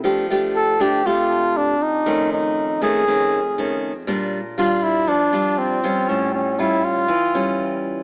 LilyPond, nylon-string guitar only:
\new Staff \with { instrumentName = "Nylon-string guitar" } { \time 4/4 \key f \major \tempo 4 = 119 << { <a d' g'>8 <a d' g'>4 <a d' g'>8 <a d' g'>4. r8 | <ees a cis'>4. <ees a cis'>8 <ees a cis'>8 r8 <ees a cis'>8 r8 | <g d' f'>8 r8 <g d' f'>4 r8 <g d' f'>4 <g des' f'>8~ | <g des' f'>4 <g cis' f'>4 r8 <g cis'>4. | } \\ { f2 c2 | f,2 f,2 | bes,2 f2 | a,2 e2 | } >> }